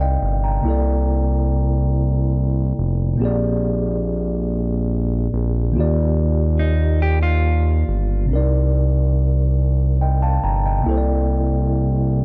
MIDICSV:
0, 0, Header, 1, 4, 480
1, 0, Start_track
1, 0, Tempo, 851064
1, 358, Time_signature, 6, 3, 24, 8
1, 6907, End_track
2, 0, Start_track
2, 0, Title_t, "Tine electric piano"
2, 0, Program_c, 0, 4
2, 0, Control_c, 0, 64, 127
2, 0, Note_on_c, 0, 48, 59
2, 0, Note_on_c, 0, 60, 53
2, 0, Note_on_c, 0, 63, 56
2, 0, Note_on_c, 0, 70, 57
2, 0, Note_on_c, 0, 74, 49
2, 0, Note_on_c, 0, 77, 50
2, 5, Note_on_c, 0, 79, 61
2, 8, Note_on_c, 0, 75, 55
2, 230, Note_off_c, 0, 79, 0
2, 231, Note_off_c, 0, 75, 0
2, 247, Note_on_c, 0, 82, 53
2, 250, Note_on_c, 0, 79, 47
2, 326, Note_off_c, 0, 48, 0
2, 333, Note_off_c, 0, 60, 0
2, 343, Note_on_c, 0, 48, 56
2, 346, Note_off_c, 0, 70, 0
2, 356, Note_on_c, 0, 58, 54
2, 358, Note_off_c, 0, 63, 0
2, 366, Control_c, 0, 64, 0
2, 369, Note_off_c, 0, 77, 0
2, 369, Note_on_c, 0, 64, 58
2, 372, Note_off_c, 0, 74, 0
2, 382, Note_on_c, 0, 69, 53
2, 396, Note_on_c, 0, 74, 65
2, 446, Control_c, 0, 64, 127
2, 471, Note_off_c, 0, 82, 0
2, 472, Note_off_c, 0, 79, 0
2, 1768, Note_off_c, 0, 48, 0
2, 1774, Note_off_c, 0, 58, 0
2, 1780, Note_on_c, 0, 46, 65
2, 1781, Note_off_c, 0, 64, 0
2, 1788, Note_off_c, 0, 69, 0
2, 1791, Note_on_c, 0, 58, 57
2, 1794, Note_off_c, 0, 74, 0
2, 1802, Note_on_c, 0, 60, 53
2, 1806, Control_c, 0, 64, 0
2, 1813, Note_on_c, 0, 67, 57
2, 1824, Note_on_c, 0, 68, 55
2, 1834, Note_on_c, 0, 74, 70
2, 1916, Control_c, 0, 64, 127
2, 3206, Note_off_c, 0, 46, 0
2, 3212, Note_off_c, 0, 58, 0
2, 3218, Note_off_c, 0, 60, 0
2, 3221, Note_on_c, 0, 51, 56
2, 3223, Note_off_c, 0, 67, 0
2, 3228, Note_off_c, 0, 68, 0
2, 3233, Note_on_c, 0, 58, 58
2, 3234, Note_off_c, 0, 74, 0
2, 3244, Control_c, 0, 64, 0
2, 3247, Note_on_c, 0, 65, 52
2, 3261, Note_on_c, 0, 67, 49
2, 3274, Note_on_c, 0, 74, 71
2, 3335, Control_c, 0, 64, 127
2, 4647, Note_off_c, 0, 51, 0
2, 4653, Note_off_c, 0, 58, 0
2, 4658, Note_on_c, 0, 48, 62
2, 4660, Note_off_c, 0, 65, 0
2, 4667, Note_off_c, 0, 67, 0
2, 4672, Note_on_c, 0, 60, 50
2, 4673, Note_off_c, 0, 74, 0
2, 4685, Control_c, 0, 64, 0
2, 4685, Note_on_c, 0, 62, 47
2, 4699, Note_on_c, 0, 70, 56
2, 4712, Note_on_c, 0, 74, 64
2, 4718, Note_off_c, 0, 62, 0
2, 4721, Note_on_c, 0, 63, 51
2, 4784, Control_c, 0, 64, 127
2, 5636, Note_off_c, 0, 74, 0
2, 5648, Note_on_c, 0, 79, 54
2, 5653, Note_on_c, 0, 75, 45
2, 5757, Note_off_c, 0, 79, 0
2, 5760, Note_off_c, 0, 75, 0
2, 5766, Note_on_c, 0, 81, 60
2, 5769, Note_on_c, 0, 77, 48
2, 5876, Note_off_c, 0, 81, 0
2, 5878, Note_off_c, 0, 77, 0
2, 5886, Note_on_c, 0, 82, 59
2, 5892, Note_on_c, 0, 79, 46
2, 5996, Note_off_c, 0, 82, 0
2, 5999, Note_off_c, 0, 79, 0
2, 6012, Note_on_c, 0, 79, 49
2, 6014, Note_on_c, 0, 75, 42
2, 6086, Note_off_c, 0, 48, 0
2, 6092, Note_off_c, 0, 60, 0
2, 6100, Note_on_c, 0, 48, 57
2, 6106, Note_off_c, 0, 70, 0
2, 6113, Note_on_c, 0, 58, 55
2, 6117, Note_off_c, 0, 63, 0
2, 6126, Control_c, 0, 64, 0
2, 6127, Note_on_c, 0, 64, 62
2, 6140, Note_on_c, 0, 69, 59
2, 6154, Note_on_c, 0, 72, 54
2, 6173, Note_off_c, 0, 72, 0
2, 6190, Note_on_c, 0, 74, 64
2, 6227, Control_c, 0, 64, 127
2, 6233, Note_off_c, 0, 79, 0
2, 6235, Note_off_c, 0, 75, 0
2, 6907, Note_off_c, 0, 48, 0
2, 6907, Note_off_c, 0, 58, 0
2, 6907, Note_off_c, 0, 64, 0
2, 6907, Note_off_c, 0, 69, 0
2, 6907, Note_off_c, 0, 74, 0
2, 6907, End_track
3, 0, Start_track
3, 0, Title_t, "Clean electric guitar"
3, 0, Program_c, 1, 27
3, 3719, Note_on_c, 1, 63, 61
3, 3946, Note_off_c, 1, 63, 0
3, 3960, Note_on_c, 1, 67, 66
3, 4073, Note_off_c, 1, 67, 0
3, 4075, Note_on_c, 1, 65, 62
3, 4654, Note_off_c, 1, 65, 0
3, 6907, End_track
4, 0, Start_track
4, 0, Title_t, "Analog synth bass"
4, 0, Program_c, 2, 38
4, 0, Note_on_c, 2, 36, 96
4, 99, Note_off_c, 2, 36, 0
4, 125, Note_on_c, 2, 31, 93
4, 339, Note_off_c, 2, 31, 0
4, 363, Note_on_c, 2, 36, 93
4, 1538, Note_off_c, 2, 36, 0
4, 1566, Note_on_c, 2, 29, 85
4, 1780, Note_off_c, 2, 29, 0
4, 1805, Note_on_c, 2, 34, 95
4, 2979, Note_off_c, 2, 34, 0
4, 3006, Note_on_c, 2, 34, 85
4, 3246, Note_on_c, 2, 39, 101
4, 3255, Note_off_c, 2, 34, 0
4, 4420, Note_off_c, 2, 39, 0
4, 4444, Note_on_c, 2, 31, 87
4, 4684, Note_on_c, 2, 36, 91
4, 4692, Note_off_c, 2, 31, 0
4, 5858, Note_off_c, 2, 36, 0
4, 5887, Note_on_c, 2, 31, 84
4, 6100, Note_off_c, 2, 31, 0
4, 6126, Note_on_c, 2, 36, 94
4, 6907, Note_off_c, 2, 36, 0
4, 6907, End_track
0, 0, End_of_file